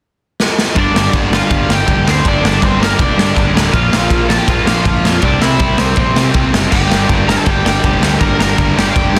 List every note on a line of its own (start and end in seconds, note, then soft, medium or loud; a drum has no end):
0.40 snare medium
0.58 snare medium
0.75 0.90 G1 medium
0.75 0.94 G2 loud
0.75 0.94 D3 loud
0.75 0.96 G3 loud
0.75 1.12 D4 medium
0.75 1.13 D5 medium
0.75 kick loud
0.75 ride medium
0.94 1.08 G1 medium
0.94 1.13 G2 medium
0.94 1.13 D3 medium
0.94 1.14 G3 medium
0.94 snare loud
1.13 1.41 G1 medium
1.13 1.30 G2 medium
1.13 1.31 D3 medium
1.13 1.32 G3 loud
1.13 kick loud
1.13 ride medium
1.31 1.48 G2 medium
1.31 1.49 D3 medium
1.31 1.50 G3 loud
1.31 1.68 F4 medium
1.31 snare loud
1.36 1.72 F5 medium
1.49 1.64 G1 medium
1.49 1.67 G2 medium
1.49 1.68 D3 medium
1.49 1.68 G3 medium
1.49 kick loud
1.49 ride medium
1.68 1.82 G1 medium
1.68 1.86 G2 medium
1.68 1.86 D3 medium
1.68 1.87 G3 medium
1.68 snare loud
1.72 2.06 G4 medium
1.72 2.07 G5 medium
1.87 2.02 F1 medium
1.87 2.04 G2 medium
1.87 2.05 D3 loud
1.87 2.06 G3 loud
1.87 kick loud
1.87 ride medium
2.06 2.20 D2 medium
2.06 2.23 G2 medium
2.06 2.24 D3 medium
2.06 2.25 G3 medium
2.06 2.25 C4 medium
2.06 2.27 C5 medium
2.06 snare loud
2.24 2.39 G1 medium
2.24 2.42 G2 loud
2.24 2.42 D3 loud
2.24 2.43 G3 loud
2.24 2.44 D4 medium
2.24 2.46 D5 medium
2.24 kick loud
2.24 ride medium
2.43 2.57 G1 medium
2.43 2.61 G2 medium
2.43 2.61 D3 medium
2.43 2.62 G3 medium
2.43 2.63 D4 medium
2.43 snare loud
2.47 2.64 D5 medium
2.62 2.76 G1 loud
2.62 2.79 G2 medium
2.62 2.80 D3 medium
2.62 2.80 G3 medium
2.62 2.80 C4 medium
2.62 2.81 C5 medium
2.62 kick loud
2.62 ride medium
2.80 2.94 G1 loud
2.80 2.97 G2 loud
2.80 2.98 D3 loud
2.80 2.99 G3 loud
2.80 2.98 A#3 medium
2.80 3.01 A#4 medium
2.80 snare loud
2.98 3.13 F1 medium
2.98 3.16 G2 medium
2.98 3.17 D3 medium
2.98 3.18 G3 medium
2.98 3.51 D4 medium
2.98 3.52 D5 loud
2.98 kick loud
2.98 ride medium
3.17 3.31 G2 medium
3.17 3.35 G2 medium
3.17 3.35 D3 medium
3.17 3.36 G3 medium
3.17 snare loud
3.36 3.50 G1 medium
3.36 3.53 G2 loud
3.36 3.54 D3 loud
3.36 3.54 G3 loud
3.36 kick loud
3.36 ride medium
3.53 3.68 D1 medium
3.53 3.72 G2 medium
3.53 3.73 D3 medium
3.53 3.73 G3 medium
3.53 snare loud
3.73 3.87 A#1 loud
3.73 3.91 A#2 loud
3.73 3.92 F3 loud
3.73 3.92 A#3 loud
3.73 4.26 F4 medium
3.73 4.26 F5 loud
3.73 kick loud
3.73 ride medium
3.91 4.05 A#1 medium
3.91 4.09 A#2 medium
3.91 4.10 F3 medium
3.91 4.11 A#3 loud
3.91 snare loud
4.10 4.38 A#1 loud
4.10 4.28 A#2 medium
4.10 4.29 F3 medium
4.10 4.30 A#3 medium
4.10 kick loud
4.10 ride medium
4.29 4.46 A#2 loud
4.29 4.47 F3 loud
4.29 4.48 A#3 loud
4.29 4.38 A4 medium
4.29 4.39 A5 medium
4.29 snare loud
4.38 4.47 G4 medium
4.38 4.49 G5 medium
4.47 4.62 A#1 loud
4.47 4.65 A#2 medium
4.47 4.66 F3 medium
4.47 4.66 A#3 medium
4.47 4.65 F4 medium
4.47 4.66 F5 loud
4.47 kick loud
4.47 ride medium
4.66 4.80 A#1 medium
4.66 4.83 A#2 medium
4.66 4.84 F3 medium
4.66 4.85 A#3 medium
4.66 5.19 F4 medium
4.66 5.19 F5 medium
4.66 snare loud
4.84 4.99 G1 medium
4.84 5.03 A#2 medium
4.84 5.04 F3 loud
4.84 5.04 A#3 loud
4.84 kick loud
4.84 ride medium
5.04 5.18 F2 medium
5.04 5.22 A#2 medium
5.04 5.22 F3 medium
5.04 5.23 A#3 medium
5.04 snare loud
5.22 5.37 C2 medium
5.22 5.40 C3 loud
5.22 5.42 G3 loud
5.22 5.42 C4 loud
5.22 5.41 D4 medium
5.22 5.42 D5 medium
5.22 kick loud
5.22 ride medium
5.40 5.55 C2 medium
5.40 5.59 C3 medium
5.40 5.61 G3 medium
5.40 5.60 C4 medium
5.40 5.77 E4 medium
5.40 5.80 E5 loud
5.40 snare loud
5.59 5.73 C2 medium
5.59 5.77 C3 medium
5.59 5.79 G3 medium
5.59 5.79 C4 medium
5.59 kick loud
5.59 ride medium
5.78 5.92 C2 medium
5.78 5.97 C3 loud
5.78 5.98 G3 loud
5.78 5.96 C4 medium
5.78 5.98 C4 loud
5.78 5.98 C5 medium
5.78 snare loud
5.96 6.11 A#1 medium
5.96 6.15 C3 medium
5.96 6.17 G3 loud
5.96 6.50 C4 medium
5.96 6.17 C4 loud
5.96 6.50 C5 medium
5.96 kick loud
5.96 ride medium
6.15 6.29 C3 medium
6.15 6.33 C3 medium
6.15 6.35 G3 medium
6.15 6.35 C4 medium
6.15 snare loud
6.34 6.48 C2 medium
6.34 6.52 C3 medium
6.34 6.54 G3 medium
6.34 6.54 C4 loud
6.34 kick loud
6.34 ride medium
6.53 6.67 F#1 medium
6.53 6.71 C3 medium
6.53 6.72 G3 medium
6.53 6.72 C4 medium
6.53 snare loud
6.71 6.86 G1 medium
6.71 6.90 G2 loud
6.71 6.90 D3 loud
6.71 6.92 G3 loud
6.71 7.24 G4 medium
6.71 7.28 G5 loud
6.71 kick loud
6.71 crash loud
6.90 7.04 G1 medium
6.90 7.10 G2 medium
6.90 7.10 D3 medium
6.90 7.11 G3 medium
6.90 snare loud
7.09 7.37 G1 medium
7.09 7.28 G2 medium
7.09 7.28 D3 medium
7.09 7.30 G3 medium
7.09 kick loud
7.09 ride medium
7.28 7.46 G2 loud
7.28 7.47 D3 loud
7.28 7.47 G3 loud
7.28 7.37 A#4 medium
7.28 7.37 A#5 medium
7.28 snare loud
7.37 7.41 A4 medium
7.37 7.41 A5 medium
7.46 7.60 G1 loud
7.46 7.66 G2 medium
7.46 7.66 D3 medium
7.46 7.67 G3 loud
7.46 7.64 G4 medium
7.46 7.64 G5 medium
7.46 kick loud
7.46 ride medium
7.64 7.78 G1 medium
7.64 7.84 G2 medium
7.64 7.84 D3 medium
7.64 7.86 G3 medium
7.64 8.18 G4 medium
7.64 8.17 G5 medium
7.64 snare loud
7.84 7.97 F1 medium
7.84 8.02 G2 medium
7.84 8.02 D3 loud
7.84 8.03 G3 loud
7.84 kick loud
7.84 ride medium
8.01 8.15 D2 medium
8.01 8.20 G2 medium
8.01 8.21 D3 medium
8.01 8.22 G3 medium
8.01 snare loud
8.21 8.34 G1 loud
8.21 8.39 G2 loud
8.21 8.40 D3 loud
8.21 8.40 G3 loud
8.21 8.38 A#4 medium
8.21 8.39 A#5 loud
8.21 kick loud
8.21 ride medium
8.39 8.53 G1 medium
8.39 8.58 G2 medium
8.39 8.58 D3 medium
8.39 8.59 G3 medium
8.39 8.75 A#4 medium
8.39 8.74 A#5 loud
8.39 snare loud
8.58 8.72 G1 loud
8.58 8.77 G2 medium
8.58 8.77 D3 medium
8.58 8.78 G3 loud
8.58 kick loud
8.58 ride medium
8.76 8.90 G1 medium
8.76 8.95 G2 loud
8.76 8.96 D3 loud
8.76 8.97 G3 loud
8.76 8.88 G4 medium
8.76 8.88 G5 medium
8.76 snare loud
8.89 8.96 F5 medium
8.95 9.09 F1 loud
8.95 9.14 G2 medium
8.95 9.14 D3 medium
8.95 9.15 G3 loud
8.95 9.19 G4 medium
8.95 9.19 G5 loud
8.95 kick loud
8.95 ride medium
9.13 9.19 G2 medium
9.13 9.19 D3 medium
9.13 9.19 G3 medium